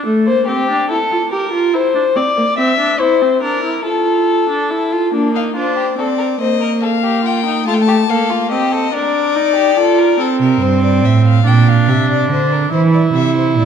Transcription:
0.06 viola A3
0.27 viola A#3, violin C5
0.47 viola C4, violin G4
0.70 viola D4
0.89 viola E4, violin A4
1.11 viola F4
1.32 viola G4, violin A#4
1.53 viola F4
1.74 viola E4, violin C5
1.95 viola D4
2.16 viola C4, violin D5
2.37 viola A#3
2.58 viola C4, violin E5
2.79 viola D4
3.00 viola E4, violin C5
3.21 viola C4
3.42 viola D4, violin A#4
3.64 viola E4
3.85 viola F4, violin A4
4.49 viola D4
4.70 viola E4
4.92 viola F4
5.13 viola A#3, violin D4
5.34 violin D#4 F5
5.56 viola D4, violin F4 C5
5.77 violin G4
5.98 viola C4, violin A4 D5
6.18 violin A#4
6.40 viola A#3, violin C5 D#5
6.61 violin A#4
6.82 violin A4 F5
7.03 violin G4
7.25 violin F4 G5
7.46 violin D#4
7.67 viola A3, violin F4 A5
7.74 violin G5
7.81 violin A5
7.88 violin G4
8.09 viola A#3, violin A4 F5
8.30 violin F4
8.51 viola C4, violin G4 D#5
8.72 violin A4
8.93 viola D4, violin A#4 D5
9.36 viola D#4
9.56 violin G4
9.77 viola F4, violin A4
9.98 violin A#4
10.19 viola C4, violin A4
10.40 cello C3, violin A#4
10.61 cello G2, violin C5
10.83 violin D5
11.03 cello A2, violin E5
11.26 violin F5
11.45 cello A#2, viola D4, violin G5
11.68 violin F5
11.88 cello C3, violin E5
12.10 violin D5
12.29 cello D3, violin C5
12.52 violin A#4
12.72 cello E3, viola E4, violin C5
12.94 violin D5
13.14 cello C3, violin E5
13.36 violin C5
13.56 cello A#2, violin D5

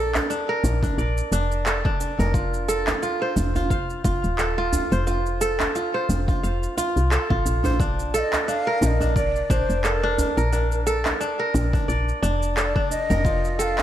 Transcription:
Already playing: fm bass A#1, kora D4 A4
0.15 clap, djembe slap, djembe tone, low woodblock, shaker
0.30 kora D4, shaker
0.49 kora A#4
0.64 fm bass A#1, djembe slap, djembe bass, shaker
0.83 kora D4, kick, djembe bass, shaker
0.98 fm bass A#1, kora D5, shaker
1.18 shaker
1.32 fm bass F1, kora D4, djembe tone, shaker
1.52 shaker
1.66 kora A4, clap, shaker
1.85 kora D4, kick, djembe slap
2.00 djembe tone, shaker
2.19 fm bass F1, kora A#4, djembe slap, djembe tone, djembe bass, shaker
2.34 kora F4, kick, djembe tone, shaker
2.54 shaker
2.68 kora A4, shaker
2.87 clap, djembe slap, djembe tone, low woodblock, shaker
3.03 kora F4, shaker
3.22 kora C5
3.36 fm bass F1, djembe slap, djembe bass, shaker
3.55 kora F4, djembe bass, shaker
3.70 kora F5, kick, shaker
3.90 shaker
4.04 fm bass F1, kora F4, kick, djembe tone, shaker
4.24 fm bass D#1, shaker
4.38 kora A4, clap, shaker
4.58 kora F4
4.73 djembe bass, shaker
4.92 fm bass F1, kora C5, shaker
5.07 kora F4, djembe tone, shaker
5.26 shaker
5.41 kora A4, shaker
5.59 clap, djembe slap, djembe tone, low woodblock, shaker
5.75 kora F4, shaker
5.94 kora C5
6.09 fm bass F1, djembe slap, djembe bass, shaker
6.28 kora F4, kick, djembe bass, shaker
6.43 fm bass F1, kora F5, shaker
6.63 shaker
6.77 kora F4, djembe tone, shaker
6.96 fm bass C2, shaker
7.11 kora A4, clap, shaker
7.30 fm bass A1, kora F4, kick, djembe slap
7.46 fm bass A#1, djembe tone, shaker
7.64 kora C5, djembe slap, djembe tone, djembe bass, shaker
7.79 kora D4, kick, djembe tone, shaker
7.99 shaker
8.14 kora A4, ney F5, shaker
8.19 ney D#5
8.33 clap, djembe slap, djembe tone, low woodblock, shaker
8.48 kora D4, ney F5, shaker
8.67 kora A#4
8.81 fm bass A#1, ney F5, djembe slap, djembe bass, shaker
8.86 ney D#5
9.01 kora D4, djembe bass, shaker
9.16 kora D5, ney D5, kick, shaker
9.36 shaker
9.50 fm bass A#1, kora D4, ney C5, kick, djembe tone, shaker
9.69 fm bass F1, shaker
9.84 kora A4, ney A#4, clap, shaker
10.03 kora D4
10.18 djembe bass, shaker
10.37 fm bass A#1, kora A#4, shaker
10.53 kora D4, djembe tone, shaker
10.72 shaker
10.87 kora A4, shaker
11.05 clap, djembe slap, djembe tone, low woodblock, shaker
11.21 kora D4, shaker
11.39 kora A#4
11.54 fm bass A#1, djembe slap, djembe bass, shaker
11.73 kora D4, kick, djembe bass, shaker
11.88 fm bass A#1, kora D5, shaker
12.09 shaker
12.23 fm bass F1, kora D4, djembe tone, shaker
12.43 shaker
12.57 kora A4, ney D5, clap, shaker
12.76 kora D4, kick, djembe slap
12.91 ney D#5, djembe tone, shaker
13.10 fm bass F1, kora A#4, djembe slap, djembe tone, djembe bass, shaker
13.24 kora F4, kick, djembe tone, shaker
13.45 shaker
13.59 kora A4, ney F5 G5, shaker
13.78 clap, djembe slap, djembe tone, low woodblock, shaker

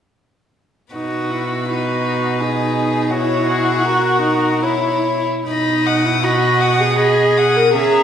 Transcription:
0.93 cello B2, viola D#4, violin F#4 B4
1.31 viola E4
1.68 violin D#4, viola F#4
2.40 viola D#4, violin G#4
3.10 viola E4, violin F#4 C#5
3.49 violin G#4
3.83 viola F#4, violin A#4
4.22 viola D#4
4.62 viola E4, violin E4 C#5
5.47 cello B2, viola D#4, violin D#5 B5
5.86 violin F#5 D#6
6.06 viola E4
6.24 viola F#4, violin D#5 B5
6.61 violin F#5 D#6
6.79 viola G#4
6.99 violin D#5 B5
7.37 violin F#5 D#6
7.56 viola A#4
7.73 cello C#3, viola G#4, violin E5 A#5

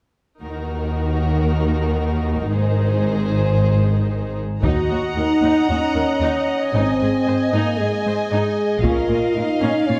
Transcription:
0.41 double bass section D#2, cello section D#2, viola section D#3 D#4, violin section F#4 A#4
2.50 double bass section G#1, cello section G#2, violin section G#4 C5
4.63 cello section D#2, double bass section D#2, viola section D#4 D#5, french horn section F#4, violin section F#5 A#5, taiko
4.90 cello section D#2, viola section F#4
5.16 cello section D#2, french horn section D#4, viola section A#4
5.42 cello section D#2, viola section D#4
5.68 cello section D#2, french horn section C#4, viola section F#4
5.95 cello section D#2, viola section A#4
6.21 cello section D#2, viola section D#4
6.73 double bass section G#1, cello section G#2, french horn section C4, viola section D#4, violin section D#5 G#5
7.01 cello section G#2, viola section G#4
7.27 cello section G#2, viola section C5
7.52 cello section G#2, french horn section A#3, viola section D#4
7.78 cello section G#2, french horn section G#3, viola section G#4
8.06 cello section G#2, viola section C5
8.32 cello section G#2, viola section D#4
8.82 double bass section A#1, cello section A#2, viola section C#4 A#4, french horn section F4, violin section F5, taiko
9.09 cello section A#2, viola section F4
9.35 cello section A#2, french horn section D#4, viola section A#4
9.62 cello section A#2, viola section C#4
9.86 cello section A#2, french horn section C#4, viola section F4, violin section C#5

